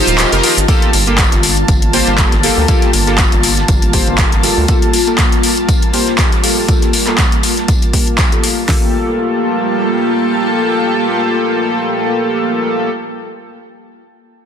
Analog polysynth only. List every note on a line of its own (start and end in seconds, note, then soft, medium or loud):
0.00 0.29 D#4 loud
0.00 0.29 F4 medium
0.00 0.29 G4 medium
0.00 0.29 C5 loud
0.32 0.53 D#4 medium
0.32 0.53 F4 medium
0.32 0.53 G4 medium
0.32 0.54 A#4 loud
0.68 0.90 A#3 medium
0.68 0.90 F4 medium
0.68 0.90 G4 medium
0.68 0.91 A4 loud
1.07 1.19 A#3 medium
1.07 1.19 F4 medium
1.07 1.20 G4 medium
1.07 1.20 A4 medium
1.93 2.16 A#3 medium
1.93 2.16 F4 medium
1.93 2.16 G4 medium
1.93 2.16 C5 medium
2.18 2.33 A#3 medium
2.18 2.33 F4 medium
2.18 2.33 G4 medium
2.18 2.33 A4 medium
2.43 2.66 A#3 medium
2.43 2.66 F4 medium
2.43 2.66 G4 medium
2.43 2.66 A4 medium
2.68 2.90 A#3 medium
2.68 2.90 F4 medium
2.68 2.90 G4 medium
2.68 2.91 A4 loud
3.07 3.19 A#3 medium
3.07 3.19 F4 medium
3.07 3.20 G4 medium
3.07 3.20 A4 medium
3.93 4.16 A#3 medium
3.93 4.16 F4 medium
3.93 4.16 G4 medium
3.93 4.16 C5 medium
4.19 4.33 A4 medium
4.43 4.66 A#3 medium
4.43 4.66 F4 medium
4.43 4.66 G4 medium
4.43 4.66 A4 medium
4.68 4.90 A#3 medium
4.68 4.90 F4 medium
4.68 4.90 G4 medium
4.68 4.91 A4 loud
5.07 5.19 A#3 medium
5.07 5.19 F4 medium
5.07 5.20 G4 medium
5.07 5.20 A4 medium
5.93 6.16 A#3 medium
5.93 6.16 F4 medium
5.93 6.16 G4 medium
5.93 6.16 C5 loud
6.18 6.33 A#3 medium
6.18 6.33 F4 medium
6.18 6.33 G4 medium
6.18 6.33 A4 medium
6.43 6.66 A#3 medium
6.43 6.66 F4 medium
6.43 6.66 G4 medium
6.43 6.66 A4 medium
6.68 6.90 A#3 loud
6.68 6.90 F4 medium
6.68 6.90 G4 medium
6.68 6.91 A4 loud
7.07 7.19 A#3 medium
7.07 7.19 F4 medium
7.07 7.20 G4 medium
7.07 7.20 A4 medium
7.93 8.29 A#3 medium
7.93 8.29 F4 medium
7.93 8.29 G4 medium
7.93 8.29 A#4 loud
8.32 8.53 A#3 medium
8.32 8.53 F4 medium
8.32 8.54 G4 medium
8.32 8.54 A4 medium
8.67 12.88 A#3 medium
8.67 12.89 F4 medium
8.67 12.90 G4 medium
8.67 12.90 A4 medium